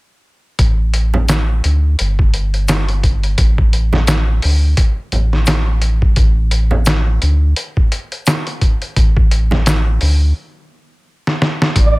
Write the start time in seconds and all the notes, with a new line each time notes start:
0.59 A1, kick, closed hi-hat
0.94 closed hi-hat
1.14 low conga
1.29 snare, closed hi-hat, shaker
1.64 D2, closed hi-hat
1.99 G1, closed hi-hat
2.19 kick
2.34 closed hi-hat
2.54 closed hi-hat
2.68 snare, closed hi-hat, shaker
2.88 closed hi-hat
3.03 kick, closed hi-hat
3.23 closed hi-hat
3.38 A1, kick, closed hi-hat
3.58 kick
3.73 closed hi-hat
3.93 snare, low conga
4.07 snare, closed hi-hat, shaker
4.42 D2, open hi-hat
4.77 kick, closed hi-hat
5.12 A1, closed hi-hat, low conga
5.33 snare
5.46 snare, closed hi-hat, shaker
5.82 closed hi-hat
6.02 kick
6.16 A1, kick, closed hi-hat
6.51 closed hi-hat
6.71 low conga
6.85 snare, closed hi-hat, shaker
7.22 D2, closed hi-hat
7.56 closed hi-hat
7.77 kick
7.92 closed hi-hat
8.12 closed hi-hat
8.26 snare, closed hi-hat, shaker
8.47 closed hi-hat
8.62 kick, closed hi-hat
8.82 closed hi-hat
8.96 A1, kick, closed hi-hat
9.17 kick
9.31 closed hi-hat
9.51 snare, low conga
9.66 snare, closed hi-hat, shaker
10.01 D2, open hi-hat
11.27 snare
11.42 snare
11.62 snare
11.75 A1 D5, kick, closed hi-hat